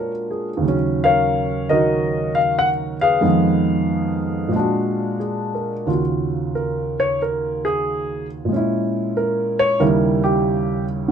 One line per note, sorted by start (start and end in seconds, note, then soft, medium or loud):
0.00 0.63 A#2 soft
0.00 0.64 G#3 soft
0.00 0.64 C#4 soft
0.00 0.64 D4 soft
0.00 0.64 F#4 medium
0.00 0.48 A#4 soft
0.00 0.11 C#5 soft
0.31 0.75 G#4 soft
0.57 3.19 D#2 soft
0.61 1.69 C#3 soft
0.61 3.23 F#3 soft
0.68 3.25 C#4 medium
1.04 1.69 A#4 medium
1.04 2.31 C#5 medium
1.04 1.65 F5 medium
1.69 3.22 C#3 soft
1.69 3.20 D#3 soft
1.69 2.96 F#4 medium
1.69 2.96 A#4 medium
1.69 2.37 D#5 medium
1.73 3.24 D#4 soft
2.35 2.58 F5 medium
2.59 2.68 F#5 medium
3.01 5.17 G#4 medium
3.01 4.50 B4 medium
3.01 5.17 F5 medium
3.21 4.53 F2 medium
3.21 4.53 D#3 soft
3.21 4.50 G#3 soft
3.21 4.53 B3 medium
4.48 5.86 A#2 soft
4.48 5.88 G#3 soft
4.56 5.90 D4 soft
4.56 5.86 F#4 medium
5.20 5.73 G#4 soft
5.55 6.01 A#4 soft
5.87 8.50 D#2 soft
5.87 8.50 C#3 soft
5.87 8.50 F4 soft
5.87 8.50 F#4 soft
6.55 6.97 A#4 medium
7.00 7.21 C#5 medium
7.22 7.64 A#4 medium
7.65 8.25 G#4 medium
8.45 9.77 A#2 soft
8.45 9.79 G#3 soft
8.53 9.81 C#4 soft
8.53 9.80 E4 medium
9.17 9.58 A#4 medium
9.59 9.80 C#5 medium
9.80 11.09 D#2 medium
9.80 11.09 C#3 medium
9.80 11.09 G3 medium
9.80 11.10 E4 medium
9.80 10.22 A#4 medium
10.24 10.84 G4 medium
11.08 11.12 G#2 medium